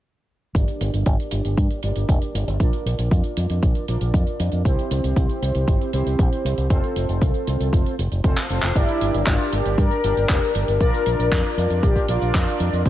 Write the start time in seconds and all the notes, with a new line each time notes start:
0.55 G1 D4 G4 A#4 D5, kick, closed hi-hat
0.68 closed hi-hat
0.81 G1, closed hi-hat
0.93 G1, closed hi-hat
1.06 G1, kick, closed hi-hat
1.20 closed hi-hat
1.31 G1, closed hi-hat
1.45 G1, closed hi-hat
1.57 G2, kick, closed hi-hat
1.70 closed hi-hat
1.82 G1 D4 G4 A#4 D5, closed hi-hat
1.95 G1, closed hi-hat
2.09 F1, kick, closed hi-hat
2.22 closed hi-hat
2.34 G1, closed hi-hat
2.47 G1, closed hi-hat
2.60 A#1 D4 F4 A#4 D5, kick, closed hi-hat
2.73 closed hi-hat
2.86 A#1, closed hi-hat
2.98 A#1, closed hi-hat
3.11 F2, kick, closed hi-hat
3.23 closed hi-hat
3.37 F2, closed hi-hat
3.50 F2, closed hi-hat
3.62 A#1, kick, closed hi-hat
3.75 closed hi-hat
3.88 A#1 D4 F4 A#4 D5, closed hi-hat
4.01 A#1, closed hi-hat
4.14 F2, kick, closed hi-hat
4.27 closed hi-hat
4.40 F2, closed hi-hat
4.51 F2, closed hi-hat
4.65 C2 C4 E4 G4 C5, kick, closed hi-hat
4.79 closed hi-hat
4.91 C2, closed hi-hat
5.04 C2, closed hi-hat
5.16 C2, kick, closed hi-hat
5.29 closed hi-hat
5.42 C2, closed hi-hat
5.54 C2, closed hi-hat
5.68 G1, kick, closed hi-hat
5.81 closed hi-hat
5.93 C2 C4 E4 G4 C5, closed hi-hat
6.06 C2, closed hi-hat
6.19 A#1, kick, closed hi-hat
6.32 closed hi-hat
6.45 C2, closed hi-hat
6.57 C2, closed hi-hat
6.70 F1 C4 F4 A4 C5, kick, closed hi-hat
6.84 closed hi-hat
6.96 F1, closed hi-hat
7.09 F1, closed hi-hat
7.22 C2, kick, closed hi-hat
7.34 closed hi-hat
7.47 C2, closed hi-hat
7.60 C2, closed hi-hat
7.73 F1, kick, closed hi-hat
7.86 closed hi-hat
7.99 F1, closed hi-hat
8.11 F1, closed hi-hat
8.24 F1 C4 F4 A4 C5, kick, closed hi-hat
8.37 clap, closed hi-hat
8.49 F1 C4 F4 A4 C5, closed hi-hat
8.62 F1, clap, closed hi-hat
8.75 G1 D4 E4 G4 A#4 D5, kick, closed hi-hat
8.88 closed hi-hat
9.01 G1, closed hi-hat
9.14 G1, closed hi-hat
9.27 G1 F4, kick, clap, closed hi-hat
9.39 closed hi-hat
9.52 G1 G4, closed hi-hat
9.65 G1, closed hi-hat
9.78 G2 A#4, kick, closed hi-hat
9.91 closed hi-hat
10.04 G1 D4 G4 A#4 D5, closed hi-hat
10.17 G1, closed hi-hat
10.29 F1, kick, clap, closed hi-hat
10.42 closed hi-hat
10.55 G1, closed hi-hat
10.68 G1, closed hi-hat
10.80 A#1 D4 F4 A#4 D5, kick, closed hi-hat
10.94 closed hi-hat
11.06 A#1, closed hi-hat
11.19 A#1, closed hi-hat
11.32 F2, kick, clap, closed hi-hat
11.45 closed hi-hat
11.57 F2, closed hi-hat
11.70 F2, closed hi-hat
11.83 A#1 G4, kick, closed hi-hat
11.96 kick, closed hi-hat
12.08 A#1 D4 F4 A#4 D5, closed hi-hat
12.21 A#1, closed hi-hat
12.34 F2 F4, kick, clap, closed hi-hat
12.48 closed hi-hat
12.60 F2, closed hi-hat
12.73 F2, closed hi-hat
12.86 C2 C4 E4 G4 A4 C5, kick, closed hi-hat